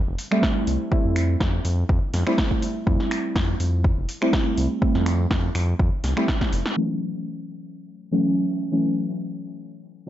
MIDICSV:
0, 0, Header, 1, 4, 480
1, 0, Start_track
1, 0, Tempo, 487805
1, 902, Time_signature, 4, 2, 24, 8
1, 9930, End_track
2, 0, Start_track
2, 0, Title_t, "Synth stab"
2, 0, Program_c, 0, 62
2, 0, Note_on_c, 0, 55, 77
2, 0, Note_on_c, 0, 57, 70
2, 0, Note_on_c, 0, 60, 72
2, 0, Note_on_c, 0, 64, 90
2, 277, Note_off_c, 0, 55, 0
2, 278, Note_off_c, 0, 57, 0
2, 280, Note_off_c, 0, 60, 0
2, 282, Note_off_c, 0, 64, 0
2, 305, Note_on_c, 0, 55, 93
2, 308, Note_on_c, 0, 57, 89
2, 312, Note_on_c, 0, 60, 89
2, 316, Note_on_c, 0, 64, 99
2, 873, Note_off_c, 0, 55, 0
2, 874, Note_off_c, 0, 57, 0
2, 876, Note_off_c, 0, 60, 0
2, 878, Note_off_c, 0, 64, 0
2, 896, Note_on_c, 0, 55, 78
2, 900, Note_on_c, 0, 57, 76
2, 903, Note_on_c, 0, 60, 70
2, 907, Note_on_c, 0, 64, 90
2, 2197, Note_off_c, 0, 55, 0
2, 2199, Note_off_c, 0, 57, 0
2, 2200, Note_off_c, 0, 60, 0
2, 2202, Note_off_c, 0, 64, 0
2, 2225, Note_on_c, 0, 55, 98
2, 2228, Note_on_c, 0, 57, 84
2, 2232, Note_on_c, 0, 60, 89
2, 2236, Note_on_c, 0, 64, 102
2, 2792, Note_off_c, 0, 55, 0
2, 2794, Note_off_c, 0, 57, 0
2, 2796, Note_off_c, 0, 60, 0
2, 2798, Note_off_c, 0, 64, 0
2, 2816, Note_on_c, 0, 55, 77
2, 2820, Note_on_c, 0, 57, 72
2, 2824, Note_on_c, 0, 60, 70
2, 2827, Note_on_c, 0, 64, 85
2, 4117, Note_off_c, 0, 55, 0
2, 4119, Note_off_c, 0, 57, 0
2, 4120, Note_off_c, 0, 60, 0
2, 4122, Note_off_c, 0, 64, 0
2, 4145, Note_on_c, 0, 55, 97
2, 4148, Note_on_c, 0, 57, 88
2, 4152, Note_on_c, 0, 60, 89
2, 4156, Note_on_c, 0, 64, 104
2, 4712, Note_off_c, 0, 55, 0
2, 4714, Note_off_c, 0, 57, 0
2, 4716, Note_off_c, 0, 60, 0
2, 4718, Note_off_c, 0, 64, 0
2, 4736, Note_on_c, 0, 55, 78
2, 4739, Note_on_c, 0, 57, 74
2, 4743, Note_on_c, 0, 60, 74
2, 4747, Note_on_c, 0, 64, 83
2, 6037, Note_off_c, 0, 55, 0
2, 6038, Note_off_c, 0, 57, 0
2, 6040, Note_off_c, 0, 60, 0
2, 6042, Note_off_c, 0, 64, 0
2, 6064, Note_on_c, 0, 55, 100
2, 6068, Note_on_c, 0, 57, 85
2, 6071, Note_on_c, 0, 60, 87
2, 6075, Note_on_c, 0, 64, 104
2, 6632, Note_off_c, 0, 55, 0
2, 6634, Note_off_c, 0, 57, 0
2, 6636, Note_off_c, 0, 60, 0
2, 6638, Note_off_c, 0, 64, 0
2, 6656, Note_on_c, 0, 52, 76
2, 6660, Note_on_c, 0, 54, 67
2, 6663, Note_on_c, 0, 57, 67
2, 6667, Note_on_c, 0, 61, 83
2, 7957, Note_off_c, 0, 52, 0
2, 7958, Note_off_c, 0, 54, 0
2, 7960, Note_off_c, 0, 57, 0
2, 7962, Note_off_c, 0, 61, 0
2, 7984, Note_on_c, 0, 52, 90
2, 7988, Note_on_c, 0, 54, 83
2, 7991, Note_on_c, 0, 57, 82
2, 7995, Note_on_c, 0, 61, 99
2, 8552, Note_off_c, 0, 52, 0
2, 8554, Note_off_c, 0, 54, 0
2, 8556, Note_off_c, 0, 57, 0
2, 8558, Note_off_c, 0, 61, 0
2, 8576, Note_on_c, 0, 52, 76
2, 8580, Note_on_c, 0, 54, 66
2, 8583, Note_on_c, 0, 57, 66
2, 8587, Note_on_c, 0, 61, 77
2, 9877, Note_off_c, 0, 52, 0
2, 9878, Note_off_c, 0, 54, 0
2, 9880, Note_off_c, 0, 57, 0
2, 9882, Note_off_c, 0, 61, 0
2, 9930, End_track
3, 0, Start_track
3, 0, Title_t, "Analog synth bass"
3, 0, Program_c, 1, 38
3, 71, Note_on_c, 1, 29, 97
3, 156, Note_off_c, 1, 29, 0
3, 662, Note_on_c, 1, 36, 84
3, 760, Note_off_c, 1, 36, 0
3, 1030, Note_on_c, 1, 41, 93
3, 1340, Note_off_c, 1, 41, 0
3, 1382, Note_on_c, 1, 41, 98
3, 1570, Note_off_c, 1, 41, 0
3, 1622, Note_on_c, 1, 41, 98
3, 1810, Note_off_c, 1, 41, 0
3, 1862, Note_on_c, 1, 41, 96
3, 1960, Note_off_c, 1, 41, 0
3, 2102, Note_on_c, 1, 41, 92
3, 2200, Note_off_c, 1, 41, 0
3, 2822, Note_on_c, 1, 41, 94
3, 2921, Note_off_c, 1, 41, 0
3, 3303, Note_on_c, 1, 41, 102
3, 3490, Note_off_c, 1, 41, 0
3, 3541, Note_on_c, 1, 41, 100
3, 3862, Note_off_c, 1, 41, 0
3, 3910, Note_on_c, 1, 29, 98
3, 3996, Note_off_c, 1, 29, 0
3, 4501, Note_on_c, 1, 36, 86
3, 4600, Note_off_c, 1, 36, 0
3, 4871, Note_on_c, 1, 41, 98
3, 5180, Note_off_c, 1, 41, 0
3, 5222, Note_on_c, 1, 41, 100
3, 5410, Note_off_c, 1, 41, 0
3, 5461, Note_on_c, 1, 41, 100
3, 5649, Note_off_c, 1, 41, 0
3, 5701, Note_on_c, 1, 41, 94
3, 5800, Note_off_c, 1, 41, 0
3, 5941, Note_on_c, 1, 36, 100
3, 6040, Note_off_c, 1, 36, 0
3, 6422, Note_on_c, 1, 29, 92
3, 6520, Note_off_c, 1, 29, 0
3, 9930, End_track
4, 0, Start_track
4, 0, Title_t, "Drums"
4, 182, Note_on_c, 9, 46, 108
4, 280, Note_off_c, 9, 46, 0
4, 310, Note_on_c, 9, 26, 66
4, 409, Note_off_c, 9, 26, 0
4, 422, Note_on_c, 9, 36, 109
4, 424, Note_on_c, 9, 38, 122
4, 520, Note_off_c, 9, 36, 0
4, 523, Note_off_c, 9, 38, 0
4, 662, Note_on_c, 9, 46, 109
4, 760, Note_off_c, 9, 46, 0
4, 902, Note_on_c, 9, 36, 109
4, 1000, Note_off_c, 9, 36, 0
4, 1142, Note_on_c, 9, 26, 64
4, 1142, Note_on_c, 9, 46, 102
4, 1240, Note_off_c, 9, 26, 0
4, 1240, Note_off_c, 9, 46, 0
4, 1382, Note_on_c, 9, 36, 114
4, 1384, Note_on_c, 9, 38, 107
4, 1481, Note_off_c, 9, 36, 0
4, 1482, Note_off_c, 9, 38, 0
4, 1622, Note_on_c, 9, 46, 103
4, 1720, Note_off_c, 9, 46, 0
4, 1862, Note_on_c, 9, 36, 118
4, 1961, Note_off_c, 9, 36, 0
4, 2102, Note_on_c, 9, 46, 107
4, 2104, Note_on_c, 9, 38, 36
4, 2201, Note_off_c, 9, 46, 0
4, 2202, Note_off_c, 9, 38, 0
4, 2230, Note_on_c, 9, 26, 67
4, 2329, Note_off_c, 9, 26, 0
4, 2342, Note_on_c, 9, 36, 108
4, 2344, Note_on_c, 9, 38, 114
4, 2441, Note_off_c, 9, 36, 0
4, 2442, Note_off_c, 9, 38, 0
4, 2471, Note_on_c, 9, 36, 61
4, 2569, Note_off_c, 9, 36, 0
4, 2582, Note_on_c, 9, 46, 104
4, 2681, Note_off_c, 9, 46, 0
4, 2822, Note_on_c, 9, 36, 110
4, 2921, Note_off_c, 9, 36, 0
4, 2953, Note_on_c, 9, 38, 35
4, 3051, Note_off_c, 9, 38, 0
4, 3063, Note_on_c, 9, 26, 62
4, 3063, Note_on_c, 9, 46, 102
4, 3161, Note_off_c, 9, 26, 0
4, 3161, Note_off_c, 9, 46, 0
4, 3302, Note_on_c, 9, 36, 113
4, 3304, Note_on_c, 9, 38, 108
4, 3401, Note_off_c, 9, 36, 0
4, 3403, Note_off_c, 9, 38, 0
4, 3542, Note_on_c, 9, 46, 104
4, 3641, Note_off_c, 9, 46, 0
4, 3782, Note_on_c, 9, 36, 118
4, 3881, Note_off_c, 9, 36, 0
4, 4022, Note_on_c, 9, 46, 100
4, 4121, Note_off_c, 9, 46, 0
4, 4150, Note_on_c, 9, 26, 72
4, 4249, Note_off_c, 9, 26, 0
4, 4262, Note_on_c, 9, 36, 110
4, 4264, Note_on_c, 9, 38, 123
4, 4360, Note_off_c, 9, 36, 0
4, 4362, Note_off_c, 9, 38, 0
4, 4502, Note_on_c, 9, 46, 100
4, 4600, Note_off_c, 9, 46, 0
4, 4742, Note_on_c, 9, 36, 113
4, 4840, Note_off_c, 9, 36, 0
4, 4872, Note_on_c, 9, 38, 39
4, 4971, Note_off_c, 9, 38, 0
4, 4982, Note_on_c, 9, 26, 62
4, 4982, Note_on_c, 9, 46, 97
4, 5080, Note_off_c, 9, 26, 0
4, 5080, Note_off_c, 9, 46, 0
4, 5222, Note_on_c, 9, 36, 109
4, 5223, Note_on_c, 9, 38, 118
4, 5320, Note_off_c, 9, 36, 0
4, 5322, Note_off_c, 9, 38, 0
4, 5461, Note_on_c, 9, 26, 64
4, 5461, Note_on_c, 9, 46, 103
4, 5560, Note_off_c, 9, 26, 0
4, 5560, Note_off_c, 9, 46, 0
4, 5702, Note_on_c, 9, 36, 120
4, 5800, Note_off_c, 9, 36, 0
4, 5941, Note_on_c, 9, 46, 98
4, 5943, Note_on_c, 9, 38, 38
4, 6040, Note_off_c, 9, 46, 0
4, 6042, Note_off_c, 9, 38, 0
4, 6070, Note_on_c, 9, 26, 70
4, 6169, Note_off_c, 9, 26, 0
4, 6182, Note_on_c, 9, 36, 110
4, 6183, Note_on_c, 9, 38, 124
4, 6280, Note_off_c, 9, 36, 0
4, 6282, Note_off_c, 9, 38, 0
4, 6310, Note_on_c, 9, 36, 60
4, 6310, Note_on_c, 9, 38, 69
4, 6408, Note_off_c, 9, 36, 0
4, 6408, Note_off_c, 9, 38, 0
4, 6421, Note_on_c, 9, 46, 103
4, 6520, Note_off_c, 9, 46, 0
4, 6550, Note_on_c, 9, 38, 98
4, 6648, Note_off_c, 9, 38, 0
4, 9930, End_track
0, 0, End_of_file